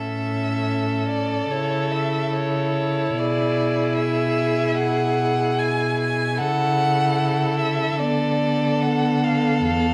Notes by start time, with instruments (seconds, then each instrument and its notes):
Already playing: cello A2, viola C#4, violin A4 E5
1.09 violin D5
1.50 cello C#3, viola E4, violin C#5
1.92 violin E5
2.36 violin C#5
3.18 cello B2, violin G#4 D5
3.98 violin E5
4.78 violin F#5
5.59 violin G#5
6.00 violin G#5
6.38 cello C#3, viola E4, violin A4 F#5
7.59 violin E5
7.99 cello D3, viola B3, violin D5
8.82 violin F#5
9.24 violin F5
9.66 cello E2, violin F5